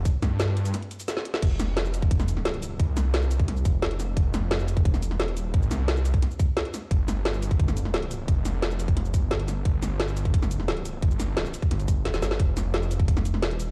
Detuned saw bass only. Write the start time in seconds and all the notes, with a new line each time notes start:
0.22 G2
1.42 F1
2.80 C2
3.65 F1
4.17 F1
5.13 E1
5.40 D#1
5.54 G#1
5.71 C2
6.91 G1
8.28 F1
9.14 G1
9.65 G1
11.02 G1
11.71 G1
12.22 G1
12.39 F1
13.36 E1
13.62 D#1